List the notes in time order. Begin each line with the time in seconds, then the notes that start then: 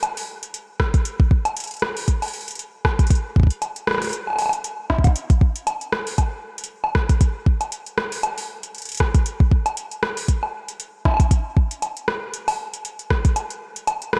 0.03 closed hi-hat, high woodblock
0.17 open hi-hat
0.43 closed hi-hat
0.54 closed hi-hat
0.80 kick, cross-stick, high woodblock
0.94 kick, closed hi-hat
1.05 closed hi-hat
1.20 kick
1.31 kick
1.45 closed hi-hat, high woodblock
1.57 closed hi-hat
1.60 closed hi-hat
1.64 closed hi-hat
1.67 closed hi-hat
1.71 closed hi-hat
1.74 closed hi-hat
1.77 closed hi-hat
1.79 cross-stick, closed hi-hat
1.97 open hi-hat
2.08 kick, closed hi-hat
2.22 open hi-hat, high woodblock
2.28 open hi-hat
2.34 open hi-hat
2.41 open hi-hat
2.48 closed hi-hat
2.51 closed hi-hat
2.55 closed hi-hat
2.59 closed hi-hat
2.85 kick, cross-stick, high woodblock
2.99 kick, closed hi-hat
3.07 kick, closed hi-hat
3.10 closed hi-hat
3.15 closed hi-hat
3.36 kick
3.40 kick
3.43 kick
3.47 kick, closed hi-hat
3.62 closed hi-hat, high woodblock
3.76 closed hi-hat
3.87 cross-stick
3.91 cross-stick
3.94 cross-stick
3.98 cross-stick
4.02 cross-stick, open hi-hat
4.04 cross-stick, open hi-hat
4.07 cross-stick, open hi-hat
4.10 cross-stick, closed hi-hat
4.27 high woodblock
4.30 high woodblock
4.33 high woodblock
4.36 open hi-hat, high woodblock
4.38 high woodblock
4.42 high woodblock
4.46 high woodblock
4.49 closed hi-hat, high woodblock
4.64 closed hi-hat
4.90 kick, cross-stick
4.99 kick
5.04 kick, closed hi-hat, high woodblock
5.07 kick
5.16 closed hi-hat
5.30 kick, closed hi-hat
5.41 kick
5.56 closed hi-hat
5.67 closed hi-hat, high woodblock
5.81 closed hi-hat
5.92 cross-stick
6.07 open hi-hat
6.18 kick, closed hi-hat, high woodblock
6.58 closed hi-hat
6.64 closed hi-hat
6.84 high woodblock
6.95 kick, cross-stick
7.09 kick, closed hi-hat
7.21 kick, closed hi-hat
7.46 kick
7.61 closed hi-hat, high woodblock
7.72 closed hi-hat
7.86 closed hi-hat
7.98 cross-stick
8.12 open hi-hat
8.23 closed hi-hat, high woodblock
8.38 open hi-hat
8.63 closed hi-hat
8.75 closed hi-hat
8.78 closed hi-hat
8.82 closed hi-hat
8.85 closed hi-hat
8.89 closed hi-hat
8.92 closed hi-hat
8.95 closed hi-hat
8.97 kick, cross-stick, closed hi-hat, high woodblock
9.14 kick, closed hi-hat
9.26 closed hi-hat
9.40 kick
9.51 kick
9.66 closed hi-hat, high woodblock
9.77 closed hi-hat
9.91 closed hi-hat
10.03 cross-stick
10.17 open hi-hat
10.28 kick, closed hi-hat
10.43 high woodblock
10.68 closed hi-hat
10.80 closed hi-hat
11.05 kick, cross-stick, high woodblock
11.08 high woodblock
11.11 high woodblock
11.14 high woodblock
11.17 kick, closed hi-hat, high woodblock
11.31 kick, closed hi-hat
11.57 kick
11.71 closed hi-hat
11.82 closed hi-hat, high woodblock
11.97 closed hi-hat
12.08 cross-stick
12.34 closed hi-hat
12.48 open hi-hat, high woodblock
12.74 closed hi-hat
12.85 closed hi-hat
12.99 closed hi-hat
13.10 kick, cross-stick
13.25 kick, closed hi-hat
13.36 closed hi-hat, high woodblock
13.50 closed hi-hat
13.76 closed hi-hat
13.87 closed hi-hat, high woodblock
14.02 closed hi-hat
14.13 cross-stick